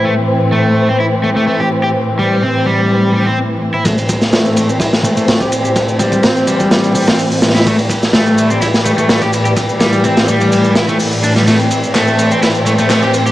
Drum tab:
RD |--------------------------------|--------------------------------|x-x-x---x---x---x---x-x-x---x---|x---x---x---x---x-x---x-x---xxxx|
HH |--------------------------------|--------------------------------|--------------------------------|--------------------o-----o-----|
SH |--------------------------------|--------------------------------|x-x-x-x-x-x-x-x-x-x-x-x-x-x-x-x-|x-x-x-x-x-x-x-x-x-x-x-x-x-x-x-x-|
CP |--------------------------------|--------------------------------|--------------------------------|--------------------------------|
SD |--------------------------------|--------------------------------|------o-o---------o-----o-------|--------o-------o-----o-----oooo|
BD |--------------------------------|--------------------------------|o---o-----------o---------o-----|o---o-o-------o-----------------|

RD |x-x-x---x---x---x---x-x-x---x---|x---x---x-x---x-x---x-x---x-x---|x-x-x---x---x---x---x-x-x---x---|
HH |--------------------------------|------------------------o-------|--------------------------------|
SH |x-x-x-x-x-x-x-x-x-x-x-x-x-x-x-x-|x-x-x-x-x-x-x-x-x-x-x-x-x-x-x-x-|x-x-x-x-x-x-x-x-x-x-x-x-x-x-x-x-|
CP |--------------------------------|--------------------------------|--------x---------------x-------|
SD |------o-o---------o-----o-------|----o-----o---------o---------o-|o-------o-------o-------o-------|
BD |o---o-----------o---------o-----|o-------------------------------|--------------------------------|